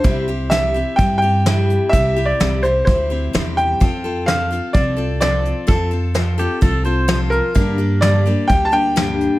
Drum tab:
HH |x-xxx-xx|x-xxx-xx|x-xxx-xx|x-xxx-xx|
SD |--o---o-|--o---o-|--o---o-|--o---o-|
BD |o---o---|o---o---|o---o---|o---o---|

HH |x-xxx-xx|
SD |--o---o-|
BD |o---o---|